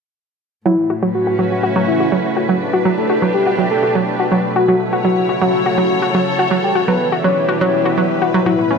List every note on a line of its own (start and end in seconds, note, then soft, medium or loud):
0.66 2.61 A2 medium
0.66 2.59 C#3 medium
0.66 0.73 F#3 medium
0.66 6.47 A3 medium
0.66 0.93 E4 medium
0.66 2.59 E4 medium
0.90 1.01 F#4 medium
1.03 1.10 F#3 medium
1.12 1.35 F#4 medium
1.12 5.34 B4 medium
1.17 2.61 C#4 medium
1.27 1.38 F#4 medium
1.32 2.61 F#4 medium
1.39 1.46 F#3 medium
1.51 1.72 F#4 medium
1.63 1.75 F#4 medium
1.76 1.83 F#3 loud
1.88 2.08 E4 loud
2.00 2.11 F#4 medium
2.12 2.20 F#3 medium
2.37 2.48 F#4 medium
2.49 2.56 F#3 medium
2.61 4.54 B2 medium
2.61 4.56 D4 medium
2.61 4.54 G4 medium
2.73 2.84 F#4 medium
2.73 2.87 F#4 medium
2.84 2.93 F#3 loud
2.84 4.56 G4 medium
2.98 3.18 A4 medium
3.10 3.21 F#4 medium
3.22 3.29 F#3 medium
3.34 3.55 G4 medium
3.47 3.57 F#4 medium
3.58 3.66 F#3 medium
3.71 3.98 A4 medium
3.83 3.94 F#4 medium
3.95 4.02 F#3 loud
4.20 4.30 F#4 medium
4.32 4.39 F#3 medium
4.56 6.49 C#3 medium
4.56 6.51 F#3 medium
4.56 4.83 F#4 loud
4.56 4.67 F#4 medium
4.56 6.49 F#4 medium
4.68 4.76 F#3 medium
4.78 7.13 E4 medium
4.91 5.03 F#4 medium
4.91 7.29 C#5 medium
5.05 5.12 F#3 medium
5.05 5.25 F#4 medium
5.29 5.40 F#4 medium
5.41 5.49 F#3 medium
5.41 5.62 F#4 medium
5.41 7.28 A4 medium
5.66 5.77 F#4 medium
5.78 5.85 F#3 loud
5.78 5.98 F#4 medium
6.02 6.13 F#4 medium
6.15 6.22 F#3 medium
6.39 6.50 F#4 medium
6.51 8.44 B2 medium
6.51 8.46 E3 medium
6.51 6.58 F#3 medium
6.51 8.44 G3 medium
6.51 8.44 E4 medium
6.64 6.77 G4 medium
6.75 6.87 F#4 medium
6.88 6.95 F#3 medium
6.88 7.08 B4 medium
7.07 8.46 D4 medium
7.12 7.23 F#4 medium
7.24 7.32 F#3 medium
7.24 8.78 B4 medium
7.24 7.45 C#5 medium
7.38 8.46 G4 medium
7.49 7.60 F#4 medium
7.61 7.68 F#3 loud
7.61 7.88 C#5 medium
7.86 7.96 F#4 medium
7.97 8.05 F#3 medium
8.22 8.33 F#4 medium
8.34 8.41 F#3 loud
8.46 8.78 A2 medium
8.46 8.78 C#3 medium
8.46 8.54 F#3 loud
8.46 8.78 A3 medium
8.46 8.74 E4 medium
8.46 8.78 E4 medium
8.71 8.78 C#4 medium